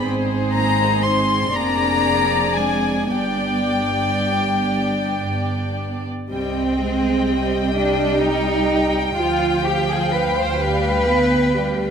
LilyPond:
<<
  \new Staff \with { instrumentName = "Violin section" } { \time 6/8 \key c \minor \tempo 4. = 41 r8 bes''8 c'''8 bes''4 aes''8 | g''2~ g''8 r8 | g''2.~ | g''2. | }
  \new Staff \with { instrumentName = "Violin section" } { \time 6/8 \key c \minor << { <aes' c''>4. <aes' d''>4. | <g' d''>2. | g''2.~ | g''2. | } \\ { r2. | r2. | ees''2. | f''2. | } >> }
  \new Staff \with { instrumentName = "Cello section" } { \time 6/8 \key c \minor r8 bes8 c'8 bes4 aes8 | g2~ g8 r8 | c'4. d'8 ees'4 | f'8 g'16 aes'16 b'16 c''16 b'4. | }
  \new Staff \with { instrumentName = "Viola section" } { \time 6/8 \key c \minor <c' ees'>4. <c' d'>4. | <b d'>2. | g8 aes8 g2 | f4. g8 b8 g8 | }
  \new Staff \with { instrumentName = "Double bass section" } { \clef bass \time 6/8 \key c \minor aes,,4. f,,4. | g,,2. | c,2. | d,2. | }
>>